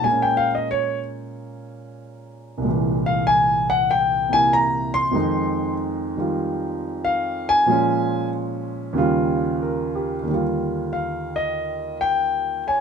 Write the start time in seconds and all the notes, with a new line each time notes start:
0.01 A#2 G#3 G#5
0.08 A#3
0.12 C#4
0.22 G5
0.37 F5
0.55 D#5
0.71 C#5
2.58 C2 A#2
2.64 G#3
2.69 E3
3.06 F5
3.27 G#5
3.70 F#5
3.91 G5
4.29 C3 A#3 E4 G#5
4.53 A#5
4.94 C6
5.11 F2 D#3 G#3
5.16 D#4
6.17 D#3 G3 F4
7.05 F5
7.49 G#5
7.66 A#2 F3 G#3
7.71 C#4
8.93 D#2 C#3 G3
8.98 F4
9.62 A#4
9.95 G4
10.23 D#2 D3
10.30 G3 F4
10.93 F5
11.36 D#5
12.01 G5
12.67 C#5 G#5